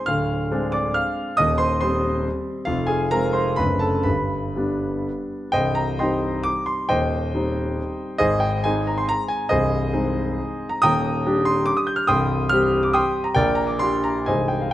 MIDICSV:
0, 0, Header, 1, 2, 480
1, 0, Start_track
1, 0, Tempo, 433213
1, 91, Time_signature, 3, 2, 24, 8
1, 3451, Tempo, 471328
1, 4411, Tempo, 504626
1, 5371, Tempo, 463679
1, 6811, Tempo, 438917
1, 9691, Tempo, 413508
1, 10651, Tempo, 450113
1, 11611, Tempo, 425532
1, 14491, Tempo, 453172
1, 15933, End_track
2, 0, Start_track
2, 0, Title_t, "Grand piano"
2, 0, Program_c, 0, 0
2, 67, Note_on_c, 0, 89, 96
2, 82, Note_on_c, 0, 77, 78
2, 88, Note_on_c, 0, 38, 66
2, 89, Note_on_c, 0, 26, 53
2, 305, Control_c, 0, 64, 127
2, 553, Note_off_c, 0, 38, 0
2, 554, Note_off_c, 0, 26, 0
2, 570, Note_on_c, 0, 56, 59
2, 570, Note_on_c, 0, 60, 58
2, 572, Note_on_c, 0, 62, 64
2, 769, Note_off_c, 0, 77, 0
2, 798, Note_on_c, 0, 86, 91
2, 806, Note_off_c, 0, 89, 0
2, 812, Note_on_c, 0, 74, 65
2, 1041, Note_off_c, 0, 74, 0
2, 1045, Note_on_c, 0, 89, 98
2, 1051, Note_off_c, 0, 86, 0
2, 1055, Note_on_c, 0, 77, 70
2, 1070, Control_c, 0, 64, 0
2, 1484, Note_off_c, 0, 60, 0
2, 1485, Note_off_c, 0, 56, 0
2, 1486, Note_off_c, 0, 62, 0
2, 1493, Note_off_c, 0, 77, 0
2, 1517, Note_on_c, 0, 87, 114
2, 1520, Note_off_c, 0, 89, 0
2, 1527, Note_on_c, 0, 75, 82
2, 1536, Note_on_c, 0, 39, 71
2, 1542, Note_on_c, 0, 27, 63
2, 1746, Note_off_c, 0, 75, 0
2, 1748, Control_c, 0, 64, 127
2, 1749, Note_on_c, 0, 84, 93
2, 1758, Note_off_c, 0, 87, 0
2, 1759, Note_on_c, 0, 72, 69
2, 1985, Note_off_c, 0, 84, 0
2, 1989, Note_off_c, 0, 72, 0
2, 1998, Note_off_c, 0, 39, 0
2, 2001, Note_off_c, 0, 27, 0
2, 2001, Note_on_c, 0, 84, 90
2, 2016, Note_on_c, 0, 72, 76
2, 2022, Note_on_c, 0, 55, 64
2, 2027, Note_on_c, 0, 60, 68
2, 2464, Note_off_c, 0, 72, 0
2, 2491, Note_off_c, 0, 84, 0
2, 2511, Control_c, 0, 64, 0
2, 2920, Note_off_c, 0, 55, 0
2, 2922, Note_off_c, 0, 60, 0
2, 2938, Note_on_c, 0, 77, 98
2, 2957, Note_on_c, 0, 41, 63
2, 2958, Note_on_c, 0, 29, 64
2, 2958, Note_on_c, 0, 65, 80
2, 3141, Control_c, 0, 64, 127
2, 3175, Note_on_c, 0, 80, 89
2, 3182, Note_off_c, 0, 65, 0
2, 3188, Note_off_c, 0, 77, 0
2, 3193, Note_on_c, 0, 68, 71
2, 3431, Note_off_c, 0, 68, 0
2, 3437, Note_off_c, 0, 29, 0
2, 3437, Note_off_c, 0, 41, 0
2, 3440, Note_off_c, 0, 80, 0
2, 3446, Note_on_c, 0, 82, 106
2, 3451, Note_on_c, 0, 70, 75
2, 3459, Note_on_c, 0, 56, 58
2, 3462, Note_on_c, 0, 60, 65
2, 3670, Note_on_c, 0, 84, 79
2, 3674, Note_off_c, 0, 70, 0
2, 3677, Note_on_c, 0, 72, 73
2, 3688, Note_off_c, 0, 82, 0
2, 3893, Note_off_c, 0, 56, 0
2, 3895, Note_off_c, 0, 60, 0
2, 3906, Note_off_c, 0, 72, 0
2, 3907, Note_on_c, 0, 83, 97
2, 3920, Note_off_c, 0, 84, 0
2, 3925, Note_on_c, 0, 71, 71
2, 3926, Note_on_c, 0, 42, 61
2, 3927, Note_on_c, 0, 57, 43
2, 3931, Note_on_c, 0, 30, 53
2, 3932, Note_on_c, 0, 60, 44
2, 3939, Note_on_c, 0, 62, 42
2, 3946, Control_c, 0, 64, 0
2, 4121, Control_c, 0, 64, 127
2, 4142, Note_on_c, 0, 81, 83
2, 4150, Note_off_c, 0, 71, 0
2, 4156, Note_on_c, 0, 69, 62
2, 4158, Note_off_c, 0, 83, 0
2, 4369, Note_off_c, 0, 57, 0
2, 4372, Note_off_c, 0, 60, 0
2, 4375, Note_off_c, 0, 62, 0
2, 4386, Note_on_c, 0, 83, 82
2, 4388, Note_off_c, 0, 69, 0
2, 4395, Note_off_c, 0, 42, 0
2, 4398, Note_off_c, 0, 30, 0
2, 4398, Note_off_c, 0, 81, 0
2, 4398, Note_on_c, 0, 71, 60
2, 4402, Note_on_c, 0, 31, 50
2, 4404, Note_on_c, 0, 43, 60
2, 4424, Control_c, 0, 64, 0
2, 4650, Control_c, 0, 64, 127
2, 4877, Note_off_c, 0, 31, 0
2, 4878, Note_off_c, 0, 43, 0
2, 4888, Note_on_c, 0, 55, 52
2, 4894, Note_on_c, 0, 59, 47
2, 4903, Note_on_c, 0, 62, 52
2, 5327, Note_off_c, 0, 71, 0
2, 5359, Note_off_c, 0, 83, 0
2, 5382, Control_c, 0, 64, 0
2, 5807, Note_off_c, 0, 55, 0
2, 5810, Note_off_c, 0, 59, 0
2, 5815, Note_off_c, 0, 62, 0
2, 5840, Note_on_c, 0, 79, 99
2, 5854, Note_on_c, 0, 72, 75
2, 5854, Note_on_c, 0, 75, 78
2, 5860, Note_on_c, 0, 24, 58
2, 5860, Note_on_c, 0, 36, 68
2, 6050, Control_c, 0, 64, 127
2, 6072, Note_off_c, 0, 72, 0
2, 6073, Note_off_c, 0, 75, 0
2, 6078, Note_on_c, 0, 82, 91
2, 6082, Note_off_c, 0, 79, 0
2, 6324, Note_off_c, 0, 24, 0
2, 6324, Note_off_c, 0, 36, 0
2, 6327, Note_on_c, 0, 84, 83
2, 6330, Note_off_c, 0, 82, 0
2, 6336, Note_on_c, 0, 75, 68
2, 6340, Note_on_c, 0, 79, 61
2, 6344, Note_on_c, 0, 55, 49
2, 6348, Note_on_c, 0, 60, 50
2, 6356, Note_on_c, 0, 63, 58
2, 6778, Note_off_c, 0, 75, 0
2, 6781, Note_off_c, 0, 79, 0
2, 6787, Note_on_c, 0, 86, 104
2, 6807, Note_off_c, 0, 84, 0
2, 6821, Control_c, 0, 64, 0
2, 7033, Note_on_c, 0, 84, 85
2, 7036, Note_off_c, 0, 86, 0
2, 7241, Note_off_c, 0, 55, 0
2, 7244, Note_off_c, 0, 60, 0
2, 7248, Note_off_c, 0, 63, 0
2, 7273, Note_off_c, 0, 84, 0
2, 7280, Note_on_c, 0, 79, 98
2, 7288, Note_on_c, 0, 75, 72
2, 7289, Note_on_c, 0, 72, 76
2, 7292, Note_on_c, 0, 39, 64
2, 7296, Note_on_c, 0, 27, 60
2, 7498, Control_c, 0, 64, 127
2, 7749, Note_off_c, 0, 39, 0
2, 7751, Note_off_c, 0, 27, 0
2, 7779, Note_on_c, 0, 55, 55
2, 7785, Note_on_c, 0, 60, 51
2, 7786, Note_on_c, 0, 63, 59
2, 8265, Control_c, 0, 64, 0
2, 8674, Note_off_c, 0, 75, 0
2, 8675, Note_off_c, 0, 72, 0
2, 8682, Note_off_c, 0, 55, 0
2, 8685, Note_off_c, 0, 60, 0
2, 8685, Note_off_c, 0, 63, 0
2, 8699, Note_on_c, 0, 75, 100
2, 8709, Note_on_c, 0, 68, 79
2, 8711, Note_on_c, 0, 72, 75
2, 8715, Note_off_c, 0, 79, 0
2, 8717, Note_on_c, 0, 44, 74
2, 8719, Note_on_c, 0, 32, 62
2, 8917, Control_c, 0, 64, 127
2, 8932, Note_off_c, 0, 68, 0
2, 8933, Note_off_c, 0, 72, 0
2, 8934, Note_on_c, 0, 79, 86
2, 8944, Note_off_c, 0, 75, 0
2, 9192, Note_off_c, 0, 44, 0
2, 9193, Note_off_c, 0, 32, 0
2, 9195, Note_on_c, 0, 80, 101
2, 9196, Note_off_c, 0, 79, 0
2, 9209, Note_on_c, 0, 72, 69
2, 9211, Note_on_c, 0, 75, 65
2, 9214, Note_on_c, 0, 56, 61
2, 9215, Note_on_c, 0, 60, 52
2, 9222, Note_on_c, 0, 63, 58
2, 9441, Note_off_c, 0, 72, 0
2, 9443, Note_off_c, 0, 75, 0
2, 9450, Note_on_c, 0, 82, 70
2, 9452, Note_off_c, 0, 80, 0
2, 9565, Note_on_c, 0, 84, 87
2, 9573, Note_off_c, 0, 82, 0
2, 9686, Note_on_c, 0, 82, 106
2, 9687, Note_off_c, 0, 84, 0
2, 9700, Control_c, 0, 64, 0
2, 9915, Note_on_c, 0, 80, 92
2, 9928, Note_off_c, 0, 82, 0
2, 10124, Note_off_c, 0, 56, 0
2, 10125, Note_off_c, 0, 60, 0
2, 10129, Note_off_c, 0, 63, 0
2, 10156, Note_on_c, 0, 75, 101
2, 10158, Note_off_c, 0, 80, 0
2, 10166, Note_on_c, 0, 72, 75
2, 10167, Note_on_c, 0, 68, 75
2, 10169, Note_on_c, 0, 36, 72
2, 10178, Note_on_c, 0, 24, 65
2, 10397, Control_c, 0, 64, 127
2, 10639, Note_off_c, 0, 36, 0
2, 10644, Note_off_c, 0, 24, 0
2, 10664, Note_on_c, 0, 56, 58
2, 10669, Note_on_c, 0, 60, 55
2, 10669, Note_on_c, 0, 63, 62
2, 11135, Control_c, 0, 64, 0
2, 11452, Note_off_c, 0, 68, 0
2, 11452, Note_off_c, 0, 72, 0
2, 11479, Note_on_c, 0, 82, 83
2, 11490, Note_off_c, 0, 75, 0
2, 11575, Note_off_c, 0, 56, 0
2, 11578, Note_off_c, 0, 60, 0
2, 11578, Note_off_c, 0, 63, 0
2, 11604, Note_off_c, 0, 82, 0
2, 11610, Note_on_c, 0, 87, 120
2, 11626, Note_on_c, 0, 82, 92
2, 11627, Note_on_c, 0, 79, 92
2, 11631, Note_on_c, 0, 27, 66
2, 11632, Note_on_c, 0, 39, 72
2, 11820, Control_c, 0, 64, 127
2, 12091, Note_off_c, 0, 27, 0
2, 12091, Note_off_c, 0, 39, 0
2, 12109, Note_on_c, 0, 55, 56
2, 12114, Note_on_c, 0, 62, 64
2, 12117, Note_on_c, 0, 67, 67
2, 12301, Note_off_c, 0, 82, 0
2, 12302, Note_off_c, 0, 79, 0
2, 12327, Note_on_c, 0, 84, 99
2, 12338, Note_off_c, 0, 87, 0
2, 12556, Note_on_c, 0, 86, 103
2, 12570, Note_off_c, 0, 84, 0
2, 12592, Control_c, 0, 64, 0
2, 12681, Note_on_c, 0, 87, 87
2, 12682, Note_off_c, 0, 86, 0
2, 12794, Note_on_c, 0, 91, 78
2, 12802, Note_off_c, 0, 87, 0
2, 12900, Note_on_c, 0, 89, 89
2, 12916, Note_off_c, 0, 91, 0
2, 12999, Note_off_c, 0, 55, 0
2, 13002, Note_off_c, 0, 62, 0
2, 13003, Note_off_c, 0, 67, 0
2, 13026, Note_off_c, 0, 89, 0
2, 13028, Note_on_c, 0, 87, 106
2, 13038, Note_on_c, 0, 79, 90
2, 13041, Note_on_c, 0, 84, 84
2, 13043, Note_on_c, 0, 36, 76
2, 13044, Note_on_c, 0, 24, 68
2, 13272, Control_c, 0, 64, 127
2, 13495, Note_off_c, 0, 79, 0
2, 13496, Note_off_c, 0, 84, 0
2, 13501, Note_on_c, 0, 89, 117
2, 13517, Note_off_c, 0, 24, 0
2, 13517, Note_off_c, 0, 36, 0
2, 13521, Note_on_c, 0, 55, 58
2, 13524, Note_off_c, 0, 87, 0
2, 13531, Note_on_c, 0, 60, 57
2, 13534, Note_on_c, 0, 67, 70
2, 13880, Note_on_c, 0, 86, 81
2, 13895, Note_off_c, 0, 89, 0
2, 13998, Note_on_c, 0, 87, 98
2, 14007, Note_on_c, 0, 79, 88
2, 14012, Note_on_c, 0, 84, 83
2, 14015, Note_off_c, 0, 86, 0
2, 14042, Control_c, 0, 64, 0
2, 14342, Note_on_c, 0, 82, 79
2, 14343, Note_off_c, 0, 79, 0
2, 14345, Note_off_c, 0, 84, 0
2, 14364, Note_off_c, 0, 87, 0
2, 14444, Note_off_c, 0, 55, 0
2, 14449, Note_off_c, 0, 60, 0
2, 14451, Note_off_c, 0, 67, 0
2, 14461, Note_on_c, 0, 79, 100
2, 14475, Note_off_c, 0, 82, 0
2, 14476, Note_on_c, 0, 70, 81
2, 14476, Note_on_c, 0, 74, 84
2, 14479, Note_on_c, 0, 34, 75
2, 14481, Note_on_c, 0, 46, 61
2, 14672, Control_c, 0, 64, 127
2, 14682, Note_on_c, 0, 82, 86
2, 14692, Note_off_c, 0, 70, 0
2, 14692, Note_off_c, 0, 74, 0
2, 14701, Note_off_c, 0, 79, 0
2, 14805, Note_on_c, 0, 86, 72
2, 14819, Note_off_c, 0, 82, 0
2, 14937, Note_on_c, 0, 84, 104
2, 14940, Note_off_c, 0, 34, 0
2, 14941, Note_off_c, 0, 46, 0
2, 14946, Note_off_c, 0, 86, 0
2, 14955, Note_on_c, 0, 58, 53
2, 14966, Note_on_c, 0, 62, 52
2, 14967, Note_on_c, 0, 67, 54
2, 15195, Note_on_c, 0, 82, 83
2, 15200, Note_off_c, 0, 84, 0
2, 15407, Note_off_c, 0, 58, 0
2, 15412, Note_off_c, 0, 62, 0
2, 15413, Note_off_c, 0, 67, 0
2, 15434, Note_on_c, 0, 80, 89
2, 15444, Note_off_c, 0, 82, 0
2, 15447, Note_on_c, 0, 72, 66
2, 15450, Note_on_c, 0, 75, 70
2, 15451, Note_on_c, 0, 56, 47
2, 15452, Note_on_c, 0, 36, 58
2, 15453, Note_on_c, 0, 24, 58
2, 15459, Control_c, 0, 64, 0
2, 15462, Note_on_c, 0, 60, 45
2, 15468, Note_on_c, 0, 63, 42
2, 15667, Note_on_c, 0, 79, 73
2, 15670, Note_off_c, 0, 72, 0
2, 15671, Note_off_c, 0, 75, 0
2, 15676, Control_c, 0, 64, 127
2, 15680, Note_off_c, 0, 80, 0
2, 15799, Note_off_c, 0, 79, 0
2, 15805, Note_on_c, 0, 77, 64
2, 15891, Note_off_c, 0, 56, 0
2, 15896, Note_off_c, 0, 60, 0
2, 15899, Note_off_c, 0, 63, 0
2, 15919, Note_off_c, 0, 24, 0
2, 15919, Note_off_c, 0, 36, 0
2, 15931, Note_off_c, 0, 77, 0
2, 15933, End_track
0, 0, End_of_file